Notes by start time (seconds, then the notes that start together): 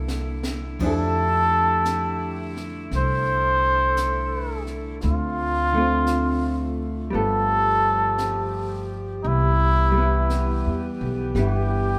Already playing: C2 D3 A#3 E4 A4
0.08 snare
0.43 snare
0.79 F2 F3 A3 D4 G4, brush sweep, kick, crash
0.84 E4 A4
1.85 brush sweep, snare, hi-hat pedal
2.56 snare
2.91 C2 A4 C5, brush sweep, snare
3.97 brush sweep, snare, hi-hat pedal
4.67 snare
5.00 D2 C4 F4, brush sweep, snare
5.04 F4
5.73 D3 A3 C4
5.78 F4
6.07 brush sweep, snare, hi-hat pedal
7.10 G1 F3 G3 B3 G4, brush sweep
7.14 F4 A4
8.18 brush sweep, snare, hi-hat pedal
9.23 C2 E3 B3 D#4, brush sweep
9.27 E4
9.92 G3
9.98 B3
10.02 E4
10.30 brush sweep, snare, hi-hat pedal
10.66 E2
11.01 B1
11.35 G1 G3 B3, brush sweep, snare
11.39 E4
11.43 G4